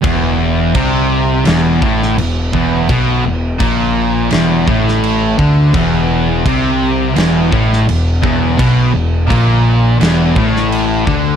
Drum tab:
CC |x---x---x---x---|x---x---x---x---|x---x---x---x---|x---x---x---x---|
SD |--------o--o----|--------o--o----|--------o--o----|--------o--o----|
BD |o---o-----o---o-|o---o-----o---o-|o---o-----o---o-|o---o-----o---o-|